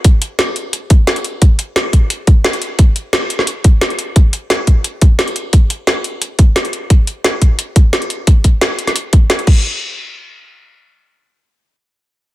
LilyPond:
\new DrumStaff \with { instrumentName = "Drums" } \drummode { \time 4/4 \tempo 4 = 175 <hh bd>8 hh8 <hh sn>8 hh8 hh8 <hh bd>8 <hh sn>16 hh16 hh8 | <hh bd>8 hh8 <hh sn>8 <hh bd>8 hh8 <hh bd>8 <hh sn>16 hh16 hh8 | <hh bd>8 hh8 <hh sn>8 hh16 sn16 hh8 <hh bd>8 <hh sn>16 hh16 hh8 | <hh bd>8 hh8 <hh sn>8 <hh bd>8 hh8 <hh bd>8 <hh sn>16 hh16 hh8 |
<hh bd>8 hh8 <hh sn>8 hh8 hh8 <hh bd>8 <hh sn>16 hh16 hh8 | <hh bd>8 hh8 <hh sn>8 <hh bd>8 hh8 <hh bd>8 <hh sn>16 hh16 hh8 | <hh bd>8 <hh bd>8 <hh sn>8 hh16 <hh sn>16 hh8 <hh bd>8 <hh sn>16 hh16 <cymc bd>8 | r4 r4 r4 r4 |
r4 r4 r4 r4 | }